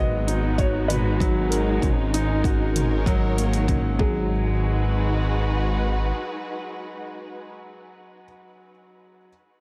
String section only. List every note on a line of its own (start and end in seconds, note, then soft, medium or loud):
0.00 3.97 G#3 medium
0.00 1.83 B3 medium
0.00 3.99 D#4 medium
0.00 2.81 F#4 medium
0.00 0.35 C#5 medium
2.24 3.99 A#4 medium
2.53 3.99 C#5 medium
3.98 7.53 G#3 medium
4.08 7.53 D#4 medium
4.50 7.54 F#4 medium
4.57 7.53 B4 medium